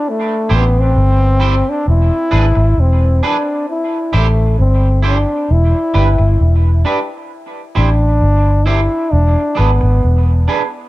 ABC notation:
X:1
M:4/4
L:1/16
Q:1/4=66
K:Am
V:1 name="Clean electric guitar"
z2 [EGc]2 z2 [EGc]2 z2 [D^GB]2 z2 [DGB]2 | z2 [EGc]2 z2 [EGc]2 z2 [DGB]2 z2 [DGB]2 | z2 [EGc]2 z2 [EGc]2 z2 [D^GB]2 z2 [DGB]2 |]
V:2 name="Trombone"
A,2 B, C4 D E4 C2 D2 | E2 A,2 C2 D2 E6 z2 | z2 D4 E2 D2 B,4 z2 |]
V:3 name="Fingered electric bass" clef=bass
z2 A,,,2 G,,,3 z E,,, z ^G,,, G,,, E,,,2 z2 | z2 A,,,2 G,,,3 z E,,, z G,,, G,,, E,,,2 z2 | z2 A,,,2 G,,,3 z E,,, z ^G,,, G,,, E,,,2 z2 |]